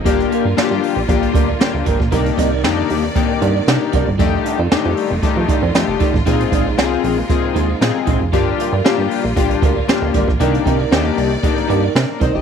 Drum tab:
HH |xxx-x-o-xxx-x-x-|xxx-x-o-x-x-x-x-|x-x-x-o-x-x-x-x-|xxx-x-o-x-x-x-x-|
SD |----o-------o---|----o-------o---|----o-------o---|----o-------o---|
BD |o-------o-o---oo|o-o-----o-----o-|o-------o-o---oo|o-o-----o-----o-|

HH |x-x-x-o-xxx-x-x-|xxx-x-o-xxx-x-x-|
SD |----o-------o---|----o-------o---|
BD |o-------o-o---oo|o-o-----o-----o-|